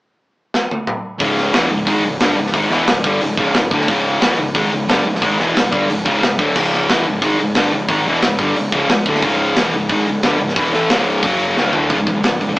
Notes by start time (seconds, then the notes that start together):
0.54 snare
0.71 high tom
0.87 mid tom
1.20 C#1 C#2 G#2 C#3, kick, open hi-hat
1.38 snare
1.53 E1 E2 B2 E3, snare, open hi-hat
1.71 C#1 C#2 G#2
1.87 G#1 G#2 D#3 G#3, kick, open hi-hat
2.03 C#1 C#2 G#2
2.19 G1 G2 D3 G3, snare, open hi-hat
2.37 C#1 C#2 G#2
2.47 snare
2.54 G#1 G#2 D#3 G#3, kick, open hi-hat
2.70 E1 E2 B2 E3, snare
2.87 C#1 C#2 G#2, snare, open hi-hat
3.04 G1 G2 D3 G3, kick
3.21 C#1 C#2 G#2, open hi-hat
3.37 C#1 C#2 G#2 C#3, kick
3.54 C#1 C#2 G#2, snare, open hi-hat
3.71 D1 D2 A2 D3, kick
3.81 snare
3.88 C#1 C#2 G#2 C#3, kick, open hi-hat
4.20 E1 E2 B2 E3, snare, open hi-hat
4.36 C#1 C#2 G#2
4.55 G#1 G#2 D#3 G#3, kick, open hi-hat
4.72 C#1 C#2 G#2
4.88 G1 G2 D3 G3, snare, open hi-hat
5.04 C#1 C#2 G#2
5.15 snare
5.22 G#1 G#2 D#3 G#3, kick, open hi-hat
5.39 E1 E2 B2 E3, snare
5.55 C#1 C#2 G#2, snare, open hi-hat
5.71 G1 G2 D3 G3, kick
5.89 C#1 C#2 G#2, open hi-hat
6.05 C#1 C#2 G#2 C#3, kick
6.22 C#1 C#2 G#2, snare, open hi-hat
6.39 D1 D2 A2 D3, kick
6.56 C#1 C#2 G#2 C#3, kick, crash
6.74 snare
6.89 E1 E2 B2 E3, snare, open hi-hat
7.06 C#1 C#2 G#2
7.21 G#1 G#2 D#3 G#3, kick, open hi-hat
7.39 C#1 C#2 G#2
7.55 G1 G2 D3 G3, snare, open hi-hat
7.72 C#1 C#2 G#2
7.89 G#1 G#2 D#3 G#3, kick, open hi-hat
8.06 E1 E2 B2 E3
8.22 C#1 C#2 G#2, snare, open hi-hat
8.39 G1 G2 D3 G3, kick
8.55 C#1 C#2 G#2, open hi-hat
8.72 C#1 C#2 G#2 C#3, kick
8.89 C#1 C#2 G#2, snare, open hi-hat
9.06 D1 D2 A2 D3, kick
9.15 snare
9.22 C#1 C#2 G#2 C#3, kick, open hi-hat
9.56 E1 E2 B2 E3, snare, open hi-hat
9.72 C#1 C#2 G#2
9.89 G#1 G#2 D#3 G#3, kick, open hi-hat
10.07 C#1 C#2 G#2
10.23 G1 G2 D3 G3, snare, open hi-hat
10.40 C#1 C#2 G#2
10.49 snare
10.56 E1 E2 B2 E3, kick, open hi-hat
10.73 A1 A2 E3 A3, snare
10.89 C#1 C#2 G#2 C#3, snare, open hi-hat
11.23 F#1 F#2 C#3 F#3, kick, open hi-hat
11.57 C#1 C#2 G#2 C#3, snare
11.73 D1 D2 A2 D3, floor tom
11.90 C#1 C#2 G#2 C#3, kick, open hi-hat
11.99 C#2 G#2
12.07 B1 C#2 G#2, kick, open hi-hat
12.15 C#2 G#2
12.23 C#1 C#2 G#2, snare, open hi-hat
12.39 C#1 C#2 G#2, open hi-hat
12.49 C#2 G#2